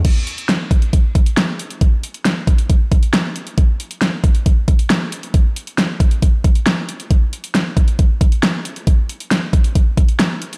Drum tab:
CC |x---------------|----------------|----------------|----------------|
HH |x-xxx-xxx-xxx-xx|x-xxx-xxx-xxx-xx|x-xxx-xxx-xxx-xx|x-xxx-xxx-xxx-xx|
SD |----o-------o---|----o-------o---|----o-------o---|----o-------o---|
BD |o-----o-o-o-----|o-----o-o-o-----|o-----o-o-o-----|o-----o-o-o-----|

CC |----------------|----------------|
HH |x-xxx-xxx-xxx-xx|x-xxx-xxx-xxx-xx|
SD |----o-------o---|----o-------o---|
BD |o-----o-o-o-----|o-----o-o-o-----|